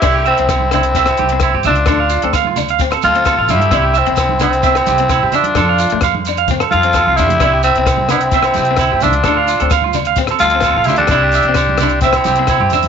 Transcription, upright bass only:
X:1
M:4/4
L:1/16
Q:1/4=130
K:C
V:1 name="Upright bass" clef=bass
C,,3 C,,6- C,, C,,3 G,, _D,,2 | D,,3 D,,6- D,, D,,3 A,,, G,,2 | C,,3 C,,6- C,, C,,3 G,, E,,2 | F,,3 F,,6- F,, F,,3 C,, F,,2 |
C,,3 C,,6- C,, C,,3 G,, _D,,2 | D,,3 D,,6- D,, D,,3 A,,, D,,2 | C,,3 C,,6- C,, C,,3 G,, E,,2 |]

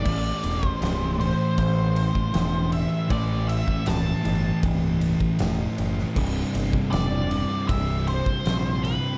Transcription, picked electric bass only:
X:1
M:4/4
L:1/8
Q:1/4=79
K:Ador
V:1 name="Picked electric bass" clef=bass
A,,, E,,, C,,,2 A,,,2 E,,,2 | A,,,2 C,,, G,,, C,,,2 E,,, F,,, | C,,, G,,, E,,,2 C,,,2 ^A,,,2 |]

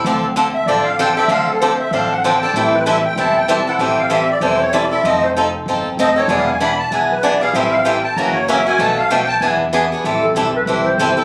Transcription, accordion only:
X:1
M:4/4
L:1/8
Q:"Swing" 1/4=192
K:Am
V:1 name="Accordion"
z3 e d f g e | f A c e f ^f g a | g B e g a g a ^f | g f e d c ^c d e |
_e c z4 e ^c | (3d f ^g b a g B d f | e f g a ^a ^c e ^g | a f g a ^g z3 |
z8 |]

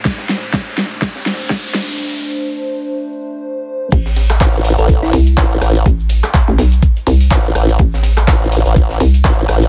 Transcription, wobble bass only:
X:1
M:4/4
L:1/16
Q:"Swing 16ths" 1/4=124
K:Am
V:1 name="Wobble bass" clef=bass
z16 | z16 | z4 A,,,3 A,,,3 z2 A,,,2 A,,,2 | z12 A,,,2 A,,,2 |
z4 A,,,3 A,,,3 z2 A,,,2 A,,,2 |]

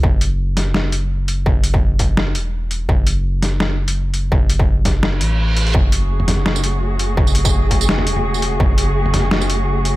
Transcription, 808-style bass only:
X:1
M:4/4
L:1/8
Q:"Swing 16ths" 1/4=168
K:F#m
V:1 name="808-style bass" clef=bass
F,,,8 | F,,,4- F,,, E,,,3 | F,,,8 | F,,,4- F,,, A,,,3 |
F,,,8 | F,,,4- F,,, E,,,3 | F,,,8 |]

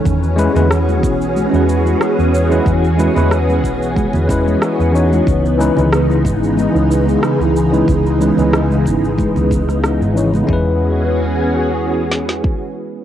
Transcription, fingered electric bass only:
X:1
M:4/4
L:1/16
Q:"Swing 16ths" 1/4=92
K:E
V:1 name="Fingered electric bass" clef=bass
E,,2 z E,,3 B,,,2 z E,,2 z2 E,,2 z | E,,2 z E,,3 B,,,2 z E,,2 z2 E,,2 z | C,,2 z C,,3 G,,,2 z C,,2 z2 C,,2 z | C,,2 z C,,3 G,,,2 z C,,4 G,,,2 z |
E,,12 z4 |]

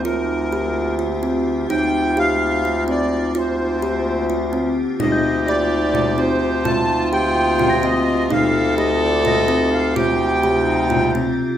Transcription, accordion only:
X:1
M:7/8
L:1/8
Q:1/4=127
K:Fmix
V:1 name="Accordion"
B4 z3 | g2 f3 d2 | c4 z3 | e2 d3 c2 |
a2 g3 e2 | f2 e d e2 f | g4- g z2 |]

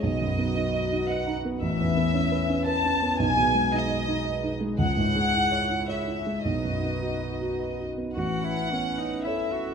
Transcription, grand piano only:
X:1
M:3/4
L:1/8
Q:1/4=112
K:Alyd
V:1 name="Grand piano"
(3B,,, F,, B, (3D d D (3d D B, | (3A,,, E,, B, (3C B C (3B C B, | (3B,,, B,, G, (3D d D (3d D G, | (3C,, G,, G, (3E c E (3c E G, |
(3B,,, F,, B, (3F d F (3d F B, | A,,,2 B,2 [Ac]2 |]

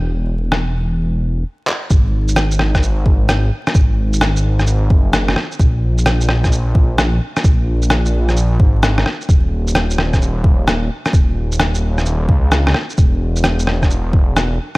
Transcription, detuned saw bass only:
X:1
M:4/4
L:1/8
Q:"Swing 16ths" 1/4=130
K:C#dor
V:1 name="Detuned saw bass" clef=bass
E,,,6 z2 | G,,,6- G,,, z | G,,,4- G,,, F,,,2 z | A,,,6- A,,, z |
A,,,4- A,,, G,,,2 z | D,,,6- D,,, z | D,,,4- D,,, C,,2 z | E,,,6- E,,, z |]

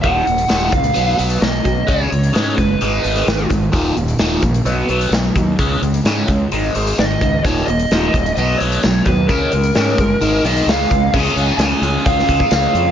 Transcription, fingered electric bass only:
X:1
M:4/4
L:1/8
Q:1/4=130
K:Dbmix
V:1 name="Fingered electric bass" clef=bass
E,,, E,,, E,,, D,, =B,,, B,,, B,,, B,,, | D,, D,, A,, G,,, A,,, A,,, A,,, A,,, | E,,, E,,, E,,, B,,, =B,,, B,,, B,,, ^D,, | D,, D,, A,, D,, A,,, A,,, A,,, D,, |
E,,, E,,, E,,, E,,, =B,,, B,,, B,,, ^D,, | D,, D,, A,, =G,,, A,,, C,, D,, D,, | D,, D,, D,, D,, D,, D,, D,, F,, |]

